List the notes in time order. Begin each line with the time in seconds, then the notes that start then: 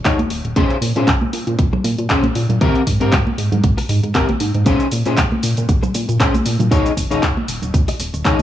0.05 D#2 D#4 G#4 C#5, kick, clap, closed hi-hat
0.19 closed hi-hat, high conga
0.30 D#1, muted clean electric guitar stroke, open hi-hat
0.45 D#1, closed hi-hat
0.56 A#1 C#4 G#4 C5, kick, closed hi-hat
0.70 closed hi-hat
0.81 A#2, open hi-hat
0.96 A#2 C#4 G#4 C5, closed hi-hat
1.07 A#1, kick, clap, closed hi-hat
1.21 muted clean electric guitar stroke, high conga
1.33 A#2, open hi-hat
1.47 A#2, closed hi-hat
1.59 A#1, kick, closed hi-hat
1.73 muted clean electric guitar stroke, low conga
1.84 A#2, muted clean electric guitar stroke, open hi-hat
1.98 A#2, muted clean electric guitar stroke, closed hi-hat
2.10 A#1 C#4 G#4 C5, kick, clap, closed hi-hat
2.23 closed hi-hat, high conga
2.35 A#2, muted clean electric guitar stroke, open hi-hat
2.49 A#2, closed hi-hat, low conga
2.61 G#1 C4 G4 A#4, kick, closed hi-hat
2.75 closed hi-hat
2.87 G#2, kick, open hi-hat
3.00 G#2 C4 G4 A#4, closed hi-hat
3.12 G#1, kick, clap, closed hi-hat
3.27 muted clean electric guitar stroke, high conga
3.38 G#2, open hi-hat
3.52 G#2, closed hi-hat, low conga
3.64 G#1, kick, closed hi-hat
3.77 muted clean electric guitar stroke, open hi-hat
3.89 G#2, muted clean electric guitar stroke, open hi-hat
4.03 G#2, muted clean electric guitar stroke, closed hi-hat
4.14 G#1 C4 G4 A#4, kick, clap, closed hi-hat
4.29 closed hi-hat, high conga
4.40 G#2, muted clean electric guitar stroke, open hi-hat
4.54 G#2, closed hi-hat
4.66 A#1 C#4 G#4 C5, kick, closed hi-hat, shaker
4.80 closed hi-hat, shaker
4.92 A#2, open hi-hat, shaker
5.06 A#2 C#4 G#4 C5, closed hi-hat, shaker
5.17 A#1, kick, clap, closed hi-hat, shaker
5.32 muted clean electric guitar stroke, high conga
5.43 A#2, open hi-hat, shaker
5.57 A#2, closed hi-hat, shaker
5.69 A#1, kick, closed hi-hat, shaker
5.83 muted clean electric guitar stroke, low conga, shaker
5.94 A#2, muted clean electric guitar stroke, open hi-hat, shaker
6.08 A#2, muted clean electric guitar stroke, closed hi-hat, shaker
6.20 A#1 C#4 G#4 C5, kick, clap, closed hi-hat, shaker
6.34 closed hi-hat, high conga, shaker
6.46 A#2, muted clean electric guitar stroke, open hi-hat, shaker
6.59 A#2, closed hi-hat, low conga, shaker
6.71 D#2 D#4 G#4 C#5, kick, closed hi-hat, shaker
6.86 closed hi-hat, shaker
6.97 D#1, kick, open hi-hat, shaker
7.11 D#1 D#4 G#4 C#5, closed hi-hat, shaker
7.23 D#2, kick, clap, closed hi-hat, shaker
7.37 muted clean electric guitar stroke, high conga
7.48 D#1, open hi-hat, shaker
7.62 D#1, closed hi-hat, low conga, shaker
7.74 D#2, kick, closed hi-hat, shaker
7.88 muted clean electric guitar stroke, open hi-hat, shaker
8.00 D#1, muted clean electric guitar stroke, open hi-hat, shaker
8.14 D#1, muted clean electric guitar stroke, closed hi-hat, shaker
8.25 D#2 D#4 G#4 C#5, kick, clap, closed hi-hat, shaker